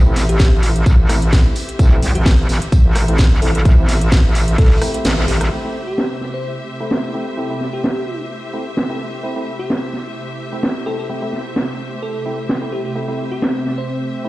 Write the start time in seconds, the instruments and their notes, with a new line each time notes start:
Already playing: string section G4 C5 E5
0.06 wobble bass A1, synth stab A3 C4 E4
0.16 snare, open hi-hat, tambourine
0.29 fm electric piano G4, closed hi-hat
0.39 kick, snare, closed hi-hat, tambourine
0.52 wobble bass A1
0.63 open hi-hat, tambourine
0.76 closed hi-hat
0.86 wobble bass A1, kick, closed hi-hat, tambourine
0.99 wobble bass A1
1.09 synth stab A3 C4 E4, cross-stick, open hi-hat, tambourine
1.22 closed hi-hat
1.32 kick, snare, closed hi-hat, tambourine
1.45 synth stab A3 C4 E4
1.55 open hi-hat, tambourine
1.69 closed hi-hat
1.79 wobble bass A1, synth stab A3 C4 E4, kick, closed hi-hat, tambourine
1.92 synth stab A3 C4 E4
2.02 wobble bass C2, snare, open hi-hat, tambourine
2.15 wobble bass A1, fm electric piano G4, closed hi-hat
2.26 kick, snare, closed hi-hat, open hi-hat
2.38 closed hi-hat
2.49 wobble bass A1, snare, open hi-hat, tambourine
2.62 closed hi-hat
2.72 kick, closed hi-hat, tambourine
2.85 wobble bass A1
2.95 cross-stick, open hi-hat, tambourine
3.08 synth stab A3 C4 E4, closed hi-hat
3.18 kick, snare, closed hi-hat, tambourine
3.32 wobble bass A1
3.42 wobble bass A1, synth stab A3 C4 E4, fm electric piano A4, open hi-hat
3.55 fm electric piano A4, closed hi-hat
3.65 synth stab A3 C4 E4, kick, closed hi-hat, tambourine
3.78 wobble bass A1, synth stab A3 C4 E4
3.88 snare, open hi-hat, tambourine
4.01 closed hi-hat
4.12 kick, snare, closed hi-hat, tambourine
4.25 wobble bass A1
4.35 open hi-hat, tambourine
4.48 closed hi-hat
4.58 wobble bass A1, fm electric piano A4, kick, snare, closed hi-hat, open hi-hat
4.65 snare, open hi-hat
4.71 snare, open hi-hat
4.76 snare, open hi-hat
4.82 synth stab A3 C4 E4, cross-stick, open hi-hat, tambourine
4.94 synth stab A3 C4 E4, closed hi-hat
5.05 wobble bass A1, snare, closed hi-hat, open hi-hat
5.18 synth stab A3 C4 E4
5.28 wobble bass A1, fm electric piano G4, snare, open hi-hat
5.41 fm electric piano G4, cross-stick, closed hi-hat
5.51 analog synth pad C3 A3 E4, synth stab A3 C4 E4, string section A3
5.64 synth stab A3 C4 E4
5.87 fm electric piano G4
5.98 snare
6.21 snare
6.34 fm electric piano C5
6.80 synth stab A3 C4 E4
6.91 snare
7.14 synth stab A3 C4 E4
7.37 synth stab A3 C4 E4
7.50 synth stab A3 C4 E4
7.61 snare
7.73 fm electric piano G4
7.84 snare
8.54 synth stab A3 C4 E4
8.77 snare
8.90 synth stab A3 C4 E4
9.23 synth stab A3 C4 E4
9.36 synth stab A3 C4 E4
9.59 fm electric piano G4
9.70 snare
9.93 snare
10.52 synth stab A3 C4 E4
10.63 snare
10.86 synth stab A3 C4 E4, fm electric piano A4
10.99 fm electric piano A4
11.09 synth stab A3 C4 E4
11.22 synth stab A3 C4 E4
11.33 snare
11.56 snare
12.02 fm electric piano A4
12.26 synth stab A3 C4 E4
12.49 snare
12.62 synth stab A3 C4 E4
12.72 fm electric piano G4
12.85 fm electric piano G4
12.95 synth stab A3 C4 E4, analog synth pad C4
13.08 synth stab A3 C4 E4
13.31 fm electric piano G4
13.42 snare
13.66 snare
13.78 fm electric piano C5
14.25 synth stab A3 C4 E4